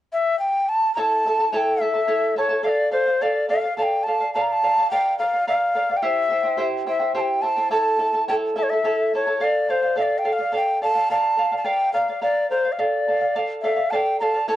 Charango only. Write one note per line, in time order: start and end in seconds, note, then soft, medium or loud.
0.97 1.25 E4 medium
0.97 1.25 A4 medium
0.97 1.25 C#5 medium
0.97 1.25 E5 medium
0.97 1.26 A5 medium
1.26 1.40 E4 soft
1.26 1.39 A4 soft
1.26 1.39 E5 soft
1.26 1.38 A5 medium
1.39 1.52 E4 soft
1.39 1.52 A4 soft
1.39 1.53 A5 soft
1.53 1.80 E4 medium
1.53 1.81 A4 medium
1.53 1.81 C#5 medium
1.53 1.80 E5 medium
1.53 1.81 A5 medium
1.81 1.94 E4 medium
1.81 1.94 A4 medium
1.81 1.94 E5 medium
1.81 1.93 A5 medium
1.94 2.07 E4 soft
1.94 2.07 A4 soft
1.94 2.07 A5 soft
2.07 2.35 E4 medium
2.07 2.36 A4 medium
2.07 2.37 C#5 medium
2.07 2.35 E5 medium
2.07 2.37 A5 medium
2.36 2.49 E4 medium
2.36 2.49 A4 soft
2.36 2.49 E5 soft
2.36 2.48 A5 medium
2.49 2.62 E4 soft
2.49 2.62 A4 soft
2.49 2.64 A5 medium
2.63 2.90 A4 medium
2.63 2.90 D5 medium
2.63 2.91 F5 medium
2.91 3.06 A4 soft
2.91 3.07 D5 medium
2.91 3.05 F5 medium
3.06 3.20 D5 soft
3.06 3.21 F5 soft
3.21 3.48 A4 medium
3.21 3.48 D5 medium
3.21 3.49 F5 medium
3.49 3.64 A4 medium
3.49 3.64 D5 medium
3.49 3.62 F5 medium
3.64 3.77 D5 soft
3.64 3.78 F5 soft
3.77 4.05 A4 medium
3.77 4.06 D5 medium
3.77 4.07 F5 medium
4.06 4.20 A4 medium
4.06 4.21 D5 soft
4.06 4.19 F5 soft
4.20 4.34 D5 soft
4.20 4.34 F5 medium
4.35 4.62 A#4 medium
4.35 4.62 D5 medium
4.35 4.63 F5 medium
4.63 4.77 A#4 medium
4.63 4.77 D5 medium
4.63 4.76 F5 medium
4.77 4.91 D5 soft
4.77 4.91 F5 medium
4.91 5.18 A#4 medium
4.91 5.19 D5 medium
4.91 5.20 F5 medium
5.20 5.33 A#4 soft
5.20 5.33 D5 medium
5.20 5.32 F5 medium
5.33 5.46 D5 soft
5.33 5.46 F5 soft
5.47 5.74 A#4 medium
5.47 5.75 D5 medium
5.47 5.75 F5 medium
5.75 5.89 A#4 soft
5.75 5.89 D5 soft
5.75 5.88 F5 medium
5.90 6.02 D5 soft
5.90 6.03 F5 soft
6.02 6.29 E4 medium
6.02 6.31 G4 medium
6.02 6.30 C5 medium
6.02 6.29 E5 medium
6.02 6.30 G5 medium
6.30 6.44 E4 medium
6.30 6.44 C5 soft
6.30 6.45 E5 soft
6.30 6.42 G5 medium
6.43 6.57 E4 soft
6.43 6.57 C5 soft
6.43 6.57 G5 soft
6.57 6.85 E4 medium
6.57 6.87 G4 medium
6.57 6.86 C5 medium
6.57 6.86 E5 medium
6.57 6.86 G5 medium
6.87 7.00 E4 medium
6.87 7.00 C5 soft
6.87 7.02 E5 soft
6.87 6.98 G5 medium
7.00 7.14 E4 soft
7.00 7.14 C5 soft
7.00 7.14 G5 soft
7.15 7.42 E4 medium
7.15 7.44 G4 medium
7.15 7.42 C5 medium
7.15 7.42 E5 medium
7.15 7.43 G5 medium
7.43 7.57 E4 soft
7.43 7.56 C5 soft
7.43 7.58 E5 medium
7.43 7.55 G5 medium
7.56 7.70 E4 soft
7.56 7.71 C5 soft
7.56 7.71 G5 soft
7.71 7.98 E4 medium
7.71 7.98 A4 medium
7.71 8.00 C#5 medium
7.71 7.98 E5 medium
7.71 7.99 A5 medium
7.99 8.14 E4 medium
7.99 8.13 A4 soft
7.99 8.14 E5 soft
7.99 8.12 A5 soft
8.13 8.28 E4 soft
8.13 8.29 A4 soft
8.13 8.28 A5 medium
8.28 8.55 E4 medium
8.28 8.55 A4 medium
8.28 8.57 C#5 medium
8.28 8.54 E5 medium
8.28 8.57 A5 medium
8.56 8.71 E4 medium
8.56 8.71 A4 medium
8.56 8.70 E5 medium
8.56 8.70 A5 medium
8.71 8.84 E4 soft
8.71 8.84 A4 soft
8.71 8.84 A5 soft
8.84 9.13 E4 medium
8.84 9.13 A4 medium
8.84 9.13 C#5 soft
8.84 9.12 E5 medium
8.84 9.13 A5 medium
9.13 9.26 E4 soft
9.13 9.26 A4 soft
9.13 9.27 E5 soft
9.13 9.25 A5 medium
9.26 9.40 E4 soft
9.26 9.39 A4 soft
9.26 9.40 A5 soft
9.40 9.67 A4 medium
9.40 9.69 D5 medium
9.40 9.69 F5 medium
9.69 9.83 A4 soft
9.69 9.83 D5 medium
9.69 9.81 F5 medium
9.82 9.96 D5 soft
9.82 9.96 F5 soft
9.96 10.23 A4 medium
9.96 10.24 D5 medium
9.96 10.24 F5 medium
10.24 10.39 A4 medium
10.24 10.39 D5 medium
10.24 10.37 F5 medium
10.38 10.51 D5 soft
10.38 10.52 F5 soft
10.52 10.81 A4 medium
10.52 10.80 D5 medium
10.52 10.81 F5 medium
10.82 10.96 A4 medium
10.82 10.95 D5 soft
10.82 10.94 F5 medium
10.95 11.10 D5 soft
10.95 11.10 F5 medium
11.10 11.36 A#4 medium
11.10 11.38 D5 medium
11.10 11.37 F5 medium
11.37 11.52 A#4 soft
11.37 11.51 D5 soft
11.37 11.50 F5 medium
11.52 11.63 D5 soft
11.52 11.64 F5 medium
11.64 11.93 A#4 medium
11.64 11.93 D5 medium
11.64 11.94 F5 medium
11.94 12.09 A#4 soft
11.94 12.08 D5 medium
11.94 12.07 F5 medium
12.08 12.21 D5 soft
12.08 12.21 F5 soft
12.21 12.49 A#4 medium
12.21 12.50 D5 medium
12.21 12.50 F5 medium
12.51 12.65 A#4 soft
12.51 12.65 D5 medium
12.51 12.63 F5 medium
12.65 12.77 D5 soft
12.65 12.77 F5 medium
12.78 13.06 A4 medium
12.78 13.07 D5 medium
12.78 13.07 F5 medium
13.07 13.22 A4 soft
13.07 13.21 D5 medium
13.07 13.20 F5 medium
13.21 13.34 D5 soft
13.21 13.35 F5 soft
13.35 13.62 A4 medium
13.35 13.63 D5 medium
13.35 13.63 F5 medium
13.63 13.78 A4 medium
13.63 13.76 D5 medium
13.63 13.75 F5 medium
13.76 13.91 D5 soft
13.76 13.91 F5 medium
13.92 14.19 A4 medium
13.92 14.20 D5 medium
13.92 14.20 F5 medium
14.21 14.35 A4 medium
14.21 14.34 D5 medium
14.21 14.33 F5 medium
14.34 14.47 D5 soft
14.34 14.48 F5 medium
14.48 14.56 E4 medium
14.48 14.56 A4 medium
14.48 14.56 C#5 medium
14.48 14.56 E5 medium
14.48 14.56 A5 medium